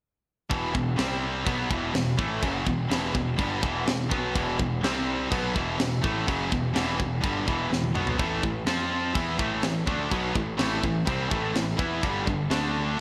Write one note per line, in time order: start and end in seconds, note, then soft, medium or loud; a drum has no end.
0.50 0.73 E1 medium
0.50 0.72 E2 medium
0.50 0.72 B2 loud
0.50 0.74 E3 loud
0.50 kick loud
0.50 crash medium
0.73 0.97 E1 medium
0.73 0.93 E2 medium
0.73 0.93 B2 medium
0.73 kick loud
0.96 1.43 C2 loud
0.96 1.45 C3 loud
0.96 1.46 G3 loud
0.96 1.46 C4 loud
0.96 snare loud
0.96 crash medium
1.46 1.69 B1 loud
1.46 1.69 B2 medium
1.46 1.70 F#3 loud
1.46 1.70 B3 loud
1.46 kick loud
1.46 crash medium
1.70 1.93 E1 medium
1.70 1.93 E2 loud
1.70 1.94 B2 loud
1.70 1.94 E3 loud
1.70 kick loud
1.93 2.16 E1 medium
1.93 2.14 E2 medium
1.93 2.14 B2 medium
1.93 snare loud
1.93 crash medium
2.18 2.41 A1 loud
2.18 2.42 A2 medium
2.18 2.42 E3 loud
2.18 2.42 A3 loud
2.18 kick loud
2.42 2.65 F#1 medium
2.42 2.65 F#2 loud
2.42 2.66 C#3 loud
2.42 2.66 F#3 loud
2.42 kick loud
2.42 crash medium
2.66 2.89 E1 medium
2.66 2.85 E2 medium
2.66 2.86 B2 medium
2.66 kick loud
2.89 3.12 E1 loud
2.89 3.14 E2 medium
2.89 3.14 B2 loud
2.89 3.15 E3 loud
2.89 snare loud
2.89 crash medium
3.15 3.37 E1 medium
3.15 3.34 E2 medium
3.15 3.34 B2 medium
3.15 kick medium
3.38 3.61 G1 loud
3.38 3.62 G2 loud
3.38 3.62 D3 loud
3.38 3.62 G3 loud
3.38 kick loud
3.38 crash medium
3.62 3.85 E1 medium
3.62 3.86 E2 loud
3.62 3.86 B2 loud
3.62 3.87 E3 loud
3.62 kick loud
3.86 4.09 E1 medium
3.86 4.07 E2 medium
3.86 4.07 B2 medium
3.86 snare loud
3.86 crash medium
4.11 4.33 B1 loud
4.11 4.33 B2 medium
4.11 4.34 F#3 loud
4.11 4.35 B3 loud
4.11 kick loud
4.34 4.57 E1 loud
4.34 4.58 E2 loud
4.34 4.58 B2 loud
4.34 4.58 E3 loud
4.34 kick loud
4.34 crash medium
4.59 4.82 E1 medium
4.59 4.78 E2 medium
4.59 4.78 B2 medium
4.59 kick loud
4.83 5.27 C2 medium
4.83 5.30 C3 medium
4.83 5.30 G3 medium
4.83 5.30 C4 loud
4.83 snare loud
4.83 crash medium
5.30 5.54 B1 loud
5.30 5.54 B2 medium
5.30 5.54 F#3 medium
5.30 5.54 B3 loud
5.30 kick loud
5.30 crash medium
5.54 5.78 E1 medium
5.54 5.77 E2 loud
5.54 5.77 B2 loud
5.54 5.78 E3 loud
5.54 kick loud
5.78 6.02 E1 medium
5.78 5.98 E2 medium
5.78 5.98 B2 medium
5.78 snare loud
5.78 crash medium
6.04 6.26 A1 medium
6.04 6.27 A2 medium
6.04 6.27 E3 medium
6.04 6.27 A3 loud
6.04 kick loud
6.27 6.50 F#1 medium
6.27 6.50 F#2 loud
6.27 6.50 C#3 loud
6.27 6.50 F#3 loud
6.27 kick loud
6.27 crash medium
6.51 6.74 E1 medium
6.51 6.70 E2 medium
6.51 6.70 B2 medium
6.51 kick loud
6.74 6.98 E1 loud
6.74 6.96 E2 medium
6.74 6.96 B2 medium
6.74 6.98 E3 loud
6.74 snare loud
6.74 crash medium
6.97 7.22 E1 medium
6.97 7.17 E2 medium
6.97 7.17 B2 medium
6.97 kick medium
7.21 7.46 G1 medium
7.21 7.45 G2 loud
7.21 7.46 D3 loud
7.21 7.46 G3 loud
7.21 kick loud
7.21 crash medium
7.46 7.70 E1 medium
7.46 7.70 E2 medium
7.46 7.70 B2 loud
7.46 7.70 E3 loud
7.46 kick loud
7.71 7.93 E1 medium
7.71 7.90 E2 medium
7.71 7.90 B2 medium
7.71 snare medium
7.84 high tom medium
7.94 8.17 B1 medium
7.94 8.17 B2 medium
7.94 8.17 F#3 medium
7.94 8.18 B3 loud
7.94 mid tom medium
8.07 floor tom medium
8.17 8.41 A1 medium
8.17 8.41 A2 loud
8.17 8.41 E3 loud
8.17 8.42 A3 loud
8.17 kick loud
8.17 crash medium
8.42 8.66 A1 medium
8.42 8.62 A2 medium
8.42 8.62 E3 medium
8.42 kick loud
8.66 9.12 F2 loud
8.66 9.14 F3 medium
8.66 9.14 C4 loud
8.66 9.14 F4 loud
8.66 snare loud
8.66 crash medium
9.14 9.37 E2 loud
9.14 9.37 E3 medium
9.14 9.38 B3 loud
9.14 9.38 E4 loud
9.14 kick loud
9.14 crash medium
9.38 9.61 A1 medium
9.38 9.62 A2 loud
9.38 9.62 E3 loud
9.38 9.62 A3 loud
9.38 kick loud
9.63 9.85 A1 medium
9.63 9.82 A2 medium
9.63 9.82 E3 medium
9.63 snare loud
9.63 crash medium
9.86 10.09 D2 medium
9.86 10.10 D3 medium
9.86 10.10 A3 loud
9.86 10.10 D4 loud
9.86 kick loud
10.11 10.34 B1 medium
10.11 10.34 B2 loud
10.11 10.34 F#3 loud
10.11 10.35 B3 loud
10.11 kick loud
10.11 crash medium
10.35 10.57 A1 medium
10.35 10.54 A2 medium
10.35 10.54 E3 medium
10.35 kick loud
10.57 10.81 A1 loud
10.57 10.80 A2 medium
10.57 10.80 E3 medium
10.57 10.82 A3 medium
10.57 snare loud
10.57 crash medium
10.81 11.06 A1 medium
10.81 11.01 A2 medium
10.81 11.02 E3 medium
10.81 kick medium
11.05 11.30 C2 medium
11.05 11.29 C3 loud
11.05 11.29 G3 loud
11.05 11.29 C4 loud
11.05 kick loud
11.05 crash medium
11.29 11.54 A1 medium
11.29 11.52 A2 loud
11.29 11.52 E3 loud
11.29 11.54 A3 loud
11.29 kick loud
11.53 11.78 A1 medium
11.53 11.73 A2 medium
11.53 11.74 E3 medium
11.53 snare loud
11.53 crash medium
11.77 12.01 E2 loud
11.77 12.01 E3 medium
11.77 12.02 B3 loud
11.77 12.02 E4 loud
11.77 kick loud
12.01 12.26 G1 medium
12.01 12.25 G2 loud
12.01 12.25 D3 loud
12.01 12.26 G3 loud
12.01 kick loud
12.01 crash medium
12.26 12.50 G1 medium
12.26 12.46 G2 medium
12.26 12.46 D3 medium
12.26 kick loud
12.50 12.96 D2 loud
12.50 12.96 D3 loud
12.50 12.98 A3 loud
12.50 12.98 D4 loud
12.50 snare loud
12.50 crash medium